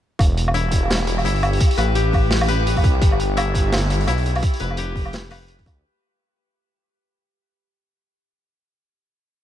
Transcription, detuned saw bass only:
0, 0, Header, 1, 2, 480
1, 0, Start_track
1, 0, Tempo, 352941
1, 262, Time_signature, 4, 2, 24, 8
1, 12825, End_track
2, 0, Start_track
2, 0, Title_t, "Detuned saw bass"
2, 0, Program_c, 0, 39
2, 262, Note_on_c, 0, 28, 96
2, 1686, Note_off_c, 0, 28, 0
2, 1705, Note_on_c, 0, 31, 106
2, 2168, Note_off_c, 0, 31, 0
2, 2417, Note_on_c, 0, 33, 102
2, 3844, Note_off_c, 0, 33, 0
2, 3862, Note_on_c, 0, 36, 96
2, 4087, Note_off_c, 0, 36, 0
2, 4103, Note_on_c, 0, 31, 94
2, 5527, Note_off_c, 0, 31, 0
2, 5549, Note_on_c, 0, 35, 101
2, 6010, Note_off_c, 0, 35, 0
2, 6266, Note_on_c, 0, 29, 98
2, 7688, Note_off_c, 0, 29, 0
2, 7702, Note_on_c, 0, 38, 98
2, 7926, Note_off_c, 0, 38, 0
2, 12825, End_track
0, 0, End_of_file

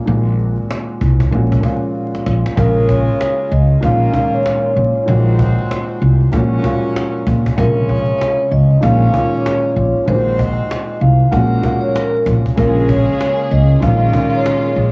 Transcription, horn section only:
0, 0, Header, 1, 2, 480
1, 0, Start_track
1, 0, Key_signature, -5, "minor"
1, 0, Tempo, 625000
1, 58, Time_signature, 4, 2, 24, 8
1, 11458, End_track
2, 0, Start_track
2, 0, Title_t, "Horn section"
2, 0, Program_c, 0, 61
2, 1980, Note_on_c, 0, 56, 87
2, 1980, Note_on_c, 0, 65, 83
2, 1980, Note_on_c, 0, 68, 95
2, 1981, Note_on_c, 0, 61, 87
2, 2684, Note_off_c, 0, 65, 0
2, 2685, Note_off_c, 0, 56, 0
2, 2685, Note_off_c, 0, 61, 0
2, 2685, Note_off_c, 0, 68, 0
2, 2935, Note_on_c, 0, 58, 85
2, 2935, Note_on_c, 0, 61, 76
2, 2935, Note_on_c, 0, 65, 95
2, 2935, Note_on_c, 0, 70, 93
2, 3642, Note_off_c, 0, 58, 0
2, 3642, Note_off_c, 0, 61, 0
2, 3642, Note_off_c, 0, 65, 0
2, 3642, Note_off_c, 0, 70, 0
2, 3900, Note_on_c, 0, 60, 86
2, 3900, Note_on_c, 0, 63, 82
2, 3900, Note_on_c, 0, 66, 86
2, 3900, Note_on_c, 0, 72, 93
2, 4604, Note_off_c, 0, 60, 0
2, 4604, Note_off_c, 0, 63, 0
2, 4604, Note_off_c, 0, 72, 0
2, 4605, Note_off_c, 0, 66, 0
2, 4853, Note_on_c, 0, 66, 87
2, 4854, Note_on_c, 0, 61, 91
2, 4854, Note_on_c, 0, 70, 83
2, 4854, Note_on_c, 0, 73, 99
2, 5561, Note_off_c, 0, 61, 0
2, 5561, Note_off_c, 0, 66, 0
2, 5561, Note_off_c, 0, 70, 0
2, 5561, Note_off_c, 0, 73, 0
2, 5817, Note_on_c, 0, 61, 90
2, 5817, Note_on_c, 0, 65, 94
2, 5817, Note_on_c, 0, 68, 85
2, 5817, Note_on_c, 0, 73, 97
2, 6523, Note_off_c, 0, 61, 0
2, 6523, Note_off_c, 0, 65, 0
2, 6523, Note_off_c, 0, 68, 0
2, 6523, Note_off_c, 0, 73, 0
2, 6783, Note_on_c, 0, 68, 88
2, 6784, Note_on_c, 0, 61, 92
2, 6784, Note_on_c, 0, 70, 86
2, 6784, Note_on_c, 0, 73, 100
2, 7486, Note_off_c, 0, 61, 0
2, 7486, Note_off_c, 0, 68, 0
2, 7486, Note_off_c, 0, 70, 0
2, 7486, Note_off_c, 0, 73, 0
2, 7745, Note_on_c, 0, 60, 87
2, 7745, Note_on_c, 0, 63, 84
2, 7745, Note_on_c, 0, 72, 94
2, 7746, Note_on_c, 0, 66, 85
2, 8447, Note_off_c, 0, 60, 0
2, 8447, Note_off_c, 0, 63, 0
2, 8447, Note_off_c, 0, 66, 0
2, 8447, Note_off_c, 0, 72, 0
2, 8690, Note_on_c, 0, 58, 81
2, 8690, Note_on_c, 0, 66, 87
2, 8690, Note_on_c, 0, 70, 93
2, 9399, Note_off_c, 0, 66, 0
2, 9399, Note_off_c, 0, 70, 0
2, 9400, Note_off_c, 0, 58, 0
2, 9662, Note_on_c, 0, 61, 88
2, 9662, Note_on_c, 0, 65, 80
2, 9663, Note_on_c, 0, 56, 93
2, 9663, Note_on_c, 0, 68, 101
2, 10365, Note_off_c, 0, 65, 0
2, 10366, Note_off_c, 0, 56, 0
2, 10366, Note_off_c, 0, 61, 0
2, 10366, Note_off_c, 0, 68, 0
2, 10615, Note_on_c, 0, 58, 88
2, 10615, Note_on_c, 0, 61, 75
2, 10615, Note_on_c, 0, 65, 96
2, 10615, Note_on_c, 0, 70, 95
2, 11322, Note_off_c, 0, 58, 0
2, 11322, Note_off_c, 0, 61, 0
2, 11322, Note_off_c, 0, 65, 0
2, 11322, Note_off_c, 0, 70, 0
2, 11458, End_track
0, 0, End_of_file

